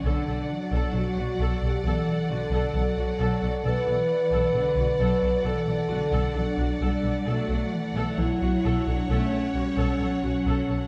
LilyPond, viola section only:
\new Staff \with { instrumentName = "Viola section" } { \time 4/4 \key b \minor \tempo 4 = 66 a'16 a'16 r16 a'16 a'16 fis'16 a'16 a'16 a'16 a'16 fis'16 a'16 a'16 fis'16 a'16 a'16 | a'16 a'16 r16 a'16 a'16 fis'16 a'16 a'16 a'16 a'16 fis'16 a'16 a'16 fis'16 a'16 a'16 | a'16 a'16 r16 a'16 a'16 fis'16 a'16 a'16 a'16 a'16 fis'16 a'16 a'16 fis'16 a'16 a'16 | }